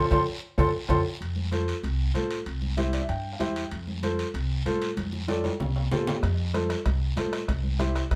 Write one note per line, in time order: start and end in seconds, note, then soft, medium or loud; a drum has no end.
0.10 0.23 F2 loud
0.10 0.21 F4 loud
0.10 0.21 A4 loud
0.10 0.21 C5 loud
0.10 0.22 C6 loud
0.10 bombo low loud
0.10 low conga medium
0.10 high timbale loud
0.10 long guiro loud
0.58 0.70 F2 loud
0.58 0.68 F4 loud
0.58 0.68 A4 loud
0.58 0.68 C5 loud
0.58 0.69 C6 loud
0.58 bombo low loud
0.58 low conga loud
0.58 high timbale loud
0.58 long guiro loud
0.88 1.01 F2 loud
0.88 0.99 F4 loud
0.88 0.99 A4 loud
0.88 0.99 C5 loud
0.88 1.00 C6 loud
0.88 bombo low medium
0.88 low conga loud
0.88 high timbale loud
0.88 long guiro loud
1.20 1.71 F2 medium
1.20 high timbale medium
1.20 long guiro medium
1.36 high conga medium
1.51 1.74 F4 medium
1.51 1.74 A4 medium
1.51 1.74 C5 medium
1.51 high conga medium
1.51 high timbale medium
1.51 short guiro medium
1.68 high timbale medium
1.68 short guiro medium
1.83 2.08 C2 loud
1.83 high timbale medium
1.83 long guiro medium
2.14 2.40 A2 medium
2.14 2.36 F4 medium
2.14 2.37 A4 medium
2.14 2.37 C5 medium
2.14 high conga medium
2.14 high timbale medium
2.14 short guiro medium
2.31 high timbale medium
2.31 short guiro medium
2.46 2.96 C2 medium
2.46 high timbale medium
2.46 long guiro medium
2.62 high conga medium
2.77 2.99 E4 medium
2.77 3.00 G4 medium
2.77 3.00 C5 medium
2.77 high conga medium
2.77 high timbale medium
2.77 short guiro medium
2.93 3.01 D5 medium
2.93 high timbale medium
2.93 short guiro medium
3.01 3.08 E5 medium
3.09 3.34 G2 loud
3.09 3.31 G5 medium
3.09 high timbale medium
3.09 long guiro medium
3.33 3.40 F5 medium
3.39 3.65 E2 medium
3.39 3.62 E4 medium
3.39 3.62 G4 medium
3.39 3.62 C5 medium
3.39 3.69 G5 medium
3.39 high conga medium
3.39 high timbale medium
3.39 short guiro medium
3.56 high timbale medium
3.56 short guiro medium
3.71 4.22 F2 medium
3.71 high timbale medium
3.71 long guiro medium
3.87 high conga medium
4.03 4.25 F4 medium
4.03 4.25 A4 medium
4.03 4.25 C5 medium
4.03 high conga medium
4.03 high timbale medium
4.03 short guiro medium
4.19 high timbale medium
4.19 short guiro medium
4.34 4.59 C2 loud
4.34 high timbale medium
4.34 long guiro medium
4.66 4.91 A2 medium
4.66 4.88 F4 medium
4.66 4.88 A4 medium
4.66 4.88 C5 medium
4.66 high conga medium
4.66 high timbale medium
4.66 short guiro medium
4.82 high timbale medium
4.82 short guiro medium
4.97 5.48 F2 medium
4.97 high conga medium
4.97 high timbale medium
4.97 long guiro medium
5.13 high conga medium
5.28 5.50 F4 medium
5.28 5.50 A4 medium
5.28 5.51 D5 medium
5.28 high conga medium
5.28 high timbale medium
5.28 short guiro medium
5.44 high conga medium
5.44 high timbale medium
5.44 short guiro medium
5.60 5.85 C2 loud
5.60 low conga medium
5.60 low timbale medium
5.60 long guiro medium
5.76 low timbale medium
5.91 6.17 A2 medium
5.91 6.13 F4 medium
5.91 6.13 A4 medium
5.91 6.14 C5 medium
5.91 low conga medium
5.91 low timbale medium
5.91 short guiro medium
6.07 low conga medium
6.07 low timbale loud
6.07 short guiro medium
6.23 6.73 F2 medium
6.23 bombo low medium
6.23 bombo rim medium
6.23 high timbale medium
6.23 long guiro medium
6.53 6.76 F4 medium
6.53 6.76 A4 medium
6.53 6.76 C5 medium
6.53 bombo rim medium
6.53 high conga medium
6.53 high timbale medium
6.53 short guiro medium
6.70 bombo rim medium
6.70 high timbale medium
6.70 short guiro medium
6.86 7.11 C2 loud
6.86 bombo low medium
6.86 bombo rim medium
6.86 high timbale medium
6.86 long guiro medium
7.16 7.42 A2 medium
7.16 7.39 F4 medium
7.16 7.39 A4 medium
7.16 7.39 C5 medium
7.16 bombo rim medium
7.16 high conga medium
7.16 high timbale medium
7.16 short guiro medium
7.33 bombo rim medium
7.33 high timbale medium
7.33 short guiro medium
7.48 7.99 C2 medium
7.48 bombo low medium
7.48 bombo rim medium
7.48 high timbale medium
7.48 long guiro medium
7.64 high conga medium
7.79 8.01 E4 medium
7.79 8.02 G4 medium
7.79 8.02 C5 medium
7.79 bombo rim medium
7.79 high conga medium
7.79 high timbale medium
7.79 short guiro medium
7.95 bombo rim medium
7.95 high timbale medium
7.95 short guiro medium
8.11 8.15 G2 loud
8.11 bombo low medium
8.11 bombo rim medium
8.11 high timbale medium
8.11 long guiro medium